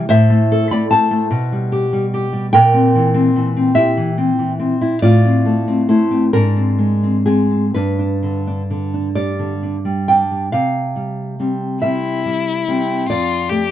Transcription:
0.09 1.27 A2 medium
0.09 0.68 C5 loud
0.09 0.67 E5 medium
0.30 0.62 A3 medium
0.52 0.83 A4 medium
0.71 1.03 A3 medium
0.71 0.90 D5 medium
0.71 0.90 B5 loud
0.91 1.23 A4 medium
0.91 2.50 C5 medium
0.91 2.49 A5 loud
1.11 1.30 A3 medium
1.31 2.50 B2 medium
1.52 1.84 G3 medium
1.72 2.05 G4 medium
1.93 2.25 G3 medium
2.14 2.46 G4 medium
2.33 2.53 G3 medium
2.53 4.98 A#2 medium
2.53 3.73 A#4 medium
2.53 3.72 G5 loud
2.74 3.07 C4 medium
2.95 3.28 E3 medium
3.14 3.48 C4 medium
3.36 3.69 E3 medium
3.57 3.89 C4 medium
3.75 4.09 E4 medium
3.75 4.15 G4 medium
3.75 4.15 E5 loud
3.97 4.30 E3 medium
4.18 4.51 C4 medium
4.39 4.72 E3 medium
4.59 4.93 C4 medium
4.81 5.02 E4 medium
5.02 6.29 A2 medium
5.02 5.85 F4 medium
5.02 5.85 D5 loud
5.25 5.59 C4 medium
5.46 5.80 A3 medium
5.68 6.02 C4 medium
5.89 6.24 A3 medium
5.89 6.31 E4 medium
5.89 6.32 C5 medium
6.11 6.33 C4 soft
6.33 7.71 G#2 medium
6.33 7.22 D4 medium
6.33 7.22 A#4 medium
6.57 6.93 C4 medium
6.79 7.16 G#3 soft
7.03 7.26 C4 medium
7.26 7.65 G#3 soft
7.26 7.49 C4 medium
7.26 7.72 G#4 medium
7.51 7.75 C4 soft
7.74 10.50 G2 medium
7.74 7.98 D4 medium
7.74 9.12 B4 medium
7.99 8.38 D4 soft
8.23 8.61 D3 soft
8.47 8.85 D4 soft
8.70 9.07 D3 soft
8.94 9.30 D4 soft
9.15 9.52 G3 soft
9.15 10.04 D5 medium
9.39 9.76 D3 soft
9.63 10.00 D4 soft
9.85 10.23 G3 soft
10.08 10.45 D4 soft
10.08 10.52 G5 medium
10.31 10.54 G3 soft
10.52 13.05 C3 medium
10.52 11.77 F5 medium
10.96 11.35 G3 soft
11.40 11.78 G3 soft
11.40 11.78 C4 soft
11.82 12.21 G3 soft
11.82 12.21 C4 soft
11.82 13.06 E4 medium
11.82 13.05 E5 medium
12.26 12.64 G3 soft
12.68 13.05 G3 soft
12.68 13.06 C4 medium
13.09 13.71 F2 medium
13.09 13.51 F4 medium
13.09 13.71 D5 medium
13.50 13.71 A3 soft
13.50 13.71 G4 medium

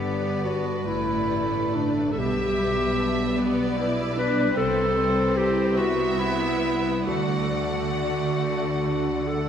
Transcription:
0.00 0.83 G1 soft
0.00 0.83 G2 soft
0.00 2.21 G2 soft
0.00 1.73 D3 soft
0.00 0.83 B3 soft
0.00 0.85 B3 soft
0.00 0.43 D4 soft
0.00 0.46 G4 medium
0.00 1.29 G4 soft
0.00 2.14 B4 soft
0.00 0.82 D5 soft
0.44 2.98 D4 soft
0.44 0.89 F#4 medium
0.86 2.18 A1 soft
0.86 2.18 A2 soft
0.86 2.16 A3 soft
0.86 3.37 B3 soft
0.86 1.77 E4 medium
0.86 2.15 D5 soft
1.30 3.77 G4 soft
1.75 2.21 D3 soft
1.75 2.13 D4 medium
2.12 2.20 A4 soft
2.18 4.52 B1 soft
2.18 4.52 B2 soft
2.18 4.59 B2 soft
2.18 3.35 G3 soft
2.18 3.77 G4 medium
2.18 7.02 B4 soft
2.18 3.35 E5 soft
2.59 4.16 G3 soft
2.99 4.60 D4 soft
3.38 5.76 B3 soft
3.38 3.77 B3 medium
3.38 4.56 D5 medium
3.77 4.16 E4 soft
3.77 6.18 G4 soft
4.17 4.95 G3 soft
4.17 4.56 D4 medium
4.17 4.53 B4 medium
4.55 7.03 C2 medium
4.55 7.02 C3 soft
4.55 7.10 C3 medium
4.55 5.75 C4 soft
4.55 5.38 A4 medium
4.55 5.75 C5 soft
4.97 6.62 G3 soft
5.36 7.11 E4 soft
5.36 5.79 G4 medium
5.77 7.07 B3 soft
5.77 7.11 B3 soft
5.77 6.21 F#4 medium
5.77 7.07 E5 soft
6.19 7.06 E4 medium
6.19 7.11 G4 soft
6.63 7.11 G3 soft
7.06 9.45 D2 soft
7.06 9.45 D3 soft
7.06 9.49 D3 soft
7.06 9.49 A3 soft
7.06 9.29 F#4 medium
7.06 9.45 D5 soft
7.06 9.45 F#5 soft
7.53 9.27 A3 soft
7.96 9.49 D5 soft
8.39 9.49 D4 soft
8.84 9.49 A4 soft
9.28 9.49 A3 soft
9.28 9.49 A4 medium

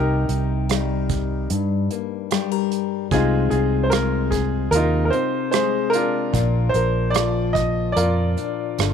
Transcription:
0.00 0.26 C2 medium
0.00 1.49 C3 medium
0.00 1.90 A#3 soft
0.00 0.29 D#4 soft
0.00 1.47 D#4 soft
0.00 1.47 G4 soft
0.00 1.46 A#4 medium
0.29 1.46 C2 medium
0.29 0.70 D#4 soft
0.29 closed hi-hat soft
0.69 2.30 G3 soft
0.69 3.07 D#4 soft
0.69 cross-stick medium
0.69 closed hi-hat medium
1.09 kick medium
1.09 closed hi-hat soft
1.50 1.88 G2 medium
1.50 3.12 G2 medium
1.50 closed hi-hat medium
1.91 3.12 A#3 medium
1.91 closed hi-hat soft
2.31 3.07 G3 medium
2.31 2.52 G4 medium
2.31 cross-stick medium
2.31 closed hi-hat soft
2.52 3.11 A#4 soft
2.72 closed hi-hat soft
3.11 3.48 C2 medium
3.11 4.72 C3 medium
3.11 3.90 G#3 medium
3.11 5.13 C4 medium
3.11 4.70 D#4 soft
3.11 4.69 F4 medium
3.11 3.52 F4 medium
3.11 3.49 G#4 medium
3.11 kick medium
3.11 closed hi-hat medium
3.50 4.68 C2 medium
3.50 3.92 F4 medium
3.50 3.82 G#4 medium
3.50 closed hi-hat soft
3.83 3.91 C5 medium
3.90 5.53 G#3 medium
3.90 6.34 F4 medium
3.90 4.28 A#4 medium
3.90 cross-stick medium
3.90 closed hi-hat medium
4.31 4.69 G#4 medium
4.31 kick medium
4.31 closed hi-hat soft
4.71 5.09 D#2 medium
4.71 6.34 C3 medium
4.71 5.93 F4 medium
4.71 5.03 A#4 medium
4.71 closed hi-hat medium
4.76 6.32 D#4 medium
5.05 5.12 A#4 soft
5.10 6.30 C4 medium
5.10 5.49 C5 medium
5.10 closed hi-hat soft
5.51 6.30 G#3 medium
5.51 6.30 G#4 medium
5.51 5.94 C5 medium
5.51 cross-stick medium
5.51 closed hi-hat medium
5.90 6.68 A#4 medium
5.90 closed hi-hat soft
5.94 7.52 D4 medium
5.94 7.52 F4 medium
6.33 6.71 A#1 medium
6.33 7.95 A#2 medium
6.33 7.14 F4 medium
6.33 kick medium
6.33 closed hi-hat medium
6.69 7.14 C5 medium
6.74 7.92 A#1 medium
6.74 8.94 A#4 medium
6.74 closed hi-hat soft
7.10 7.54 D5 medium
7.10 closed hi-hat medium
7.15 8.94 F3 medium
7.15 8.94 F4 medium
7.15 cross-stick medium
7.53 7.96 D#5 medium
7.53 kick medium
7.53 closed hi-hat soft
7.92 8.34 F2 medium
7.92 8.94 A#2 soft
7.92 8.94 D5 medium
7.96 8.94 F4 medium
7.96 8.94 A#4 medium
7.96 closed hi-hat medium
8.37 8.94 D4 soft
8.37 closed hi-hat soft
8.78 8.94 G1 medium
8.78 8.94 D3 soft
8.78 cross-stick medium
8.78 closed hi-hat medium

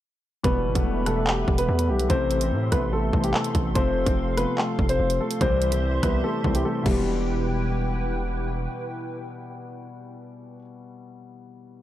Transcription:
0.43 0.67 E1 loud
0.43 0.70 B2 loud
0.43 0.70 E3 medium
0.43 0.70 G3 medium
0.43 1.03 B3 medium
0.43 0.71 B3 loud
0.43 2.08 G4 medium
0.43 1.03 B4 loud
0.43 2.08 B4 medium
0.43 3.72 E5 medium
0.43 2.08 B5 medium
0.43 kick loud
0.43 closed hi-hat medium
0.65 0.75 G1 loud
0.75 1.45 E1 loud
0.75 1.01 B2 medium
0.75 1.01 E3 medium
0.75 1.02 G3 medium
0.75 1.02 A3 medium
0.75 kick loud
0.75 closed hi-hat medium
1.05 1.75 B2 medium
1.05 1.75 E3 medium
1.05 1.75 G3 medium
1.05 1.76 A3 medium
1.05 1.25 A3 medium
1.05 1.24 A4 medium
1.05 cross-stick medium
1.05 closed hi-hat medium
1.27 1.57 G3 medium
1.27 1.56 G4 medium
1.27 clap loud
1.48 1.68 E1 loud
1.48 kick medium
1.58 1.88 B3 medium
1.58 1.87 B4 medium
1.58 closed hi-hat medium
1.69 1.91 E2 loud
1.79 closed hi-hat medium
1.89 2.09 B1 loud
1.89 2.07 G3 medium
1.89 2.07 G4 medium
2.00 closed hi-hat medium
2.09 2.53 A1 loud
2.09 2.35 C3 loud
2.09 2.36 E3 medium
2.09 2.36 A3 medium
2.09 2.36 C4 loud
2.09 2.69 C4 medium
2.09 5.38 A4 medium
2.09 2.68 C5 loud
2.09 5.38 C6 medium
2.09 kick loud
2.09 closed hi-hat medium
2.31 closed hi-hat medium
2.40 2.66 C3 medium
2.40 2.67 E3 medium
2.40 2.67 A3 medium
2.40 2.67 C4 medium
2.40 closed hi-hat medium
2.51 2.71 A2 loud
2.71 3.12 A1 loud
2.71 3.06 C3 medium
2.71 3.06 E3 medium
2.71 3.07 A3 medium
2.71 2.90 B3 medium
2.71 3.07 B3 medium
2.71 2.90 B4 medium
2.71 kick loud
2.71 cross-stick medium
2.71 closed hi-hat medium
2.93 3.22 A3 medium
2.93 3.22 A4 medium
3.13 3.33 A1 loud
3.13 3.65 C3 medium
3.13 3.65 E3 medium
3.13 3.66 A3 medium
3.13 3.66 C4 medium
3.13 kick medium
3.24 3.33 G3 medium
3.24 3.33 G4 medium
3.24 closed hi-hat medium
3.34 3.73 A3 medium
3.34 3.73 A4 medium
3.34 clap loud
3.44 closed hi-hat medium
3.55 3.75 A1 loud
3.55 kick loud
3.55 closed hi-hat medium
3.74 4.05 F1 loud
3.74 4.01 C3 medium
3.74 4.01 F3 medium
3.74 4.01 A3 loud
3.74 4.02 C4 loud
3.74 4.34 C4 medium
3.74 4.34 C5 loud
3.74 5.39 F5 medium
3.74 kick loud
3.74 closed hi-hat medium
4.06 4.46 F1 loud
4.06 4.32 C3 medium
4.06 4.32 F3 medium
4.06 4.32 A3 medium
4.06 4.33 C4 loud
4.06 kick loud
4.06 closed hi-hat medium
4.37 5.06 C3 medium
4.37 5.06 F3 medium
4.37 5.07 A3 medium
4.37 4.56 B3 medium
4.37 5.07 C4 medium
4.37 4.55 B4 medium
4.37 cross-stick medium
4.37 closed hi-hat medium
4.58 4.88 A3 medium
4.58 4.87 A4 medium
4.58 clap loud
4.79 4.99 F1 loud
4.79 kick medium
4.89 5.19 C4 medium
4.89 5.18 C5 loud
4.89 closed hi-hat medium
5.00 5.19 F1 loud
5.10 closed hi-hat medium
5.21 5.39 A3 medium
5.21 5.38 A4 medium
5.31 closed hi-hat medium
5.41 6.01 C2 loud
5.41 5.67 C3 loud
5.41 5.67 E3 medium
5.41 5.67 G3 medium
5.41 6.00 C4 medium
5.41 5.68 C4 loud
5.41 6.84 G4 medium
5.41 5.99 C5 loud
5.41 6.84 C5 medium
5.41 6.84 E5 medium
5.41 6.84 C6 medium
5.41 kick loud
5.41 closed hi-hat medium
5.62 closed hi-hat medium
5.72 5.98 C3 medium
5.72 5.98 E3 medium
5.72 5.98 G3 medium
5.72 5.98 C4 medium
5.72 closed hi-hat medium
6.02 6.23 C2 loud
6.02 6.37 C3 medium
6.02 6.37 E3 medium
6.02 6.38 G3 medium
6.02 6.22 B3 medium
6.02 6.38 C4 medium
6.02 6.21 B4 medium
6.02 kick loud
6.02 cross-stick medium
6.02 closed hi-hat medium
6.24 6.53 A3 medium
6.24 6.53 A4 medium
6.43 6.64 C2 loud
6.43 6.85 C3 medium
6.43 6.83 E3 medium
6.43 6.85 G3 medium
6.43 6.86 C4 medium
6.43 kick medium
6.55 6.64 G3 medium
6.55 6.64 G4 medium
6.55 closed hi-hat medium
6.65 6.85 A3 medium
6.65 6.85 A4 medium
6.82 8.68 E1 loud
6.82 10.56 B2 medium
6.82 10.58 E3 medium
6.82 8.27 G3 medium
6.82 10.59 E4 medium
6.82 10.59 G4 medium
6.82 10.59 B4 medium
6.82 10.59 G5 loud
6.82 kick loud
6.82 crash medium
6.87 10.60 G3 medium
6.87 10.62 B3 medium

